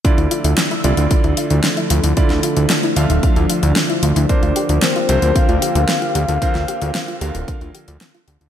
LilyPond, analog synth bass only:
\new Staff \with { instrumentName = "Analog synth bass" } { \clef bass \time 4/4 \key d \minor \tempo 4 = 113 r16 d,16 r16 d,16 r8 c,16 d,16 r16 d,16 r16 d,16 r8 d,16 d,16 | r16 d,16 r16 d,16 r8 d,16 d,,16 r16 d,16 r16 d,16 r8 d,16 d,16 | r16 d,16 r16 d,16 r8 c,16 d,16 r16 d,16 r16 d,16 r8 d,16 d,16 | r16 d,16 r16 d,16 r8 d,16 d,,16 r16 d,16 r16 d,16 r8 d,16 d,16 | }